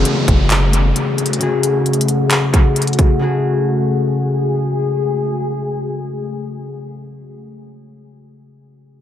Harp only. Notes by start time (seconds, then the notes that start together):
Already playing: C#3 A3 F#4 G#4
1.39 C#3 A3 F#4
1.43 G#4
3.19 C#3 A3 F#4
3.23 G#4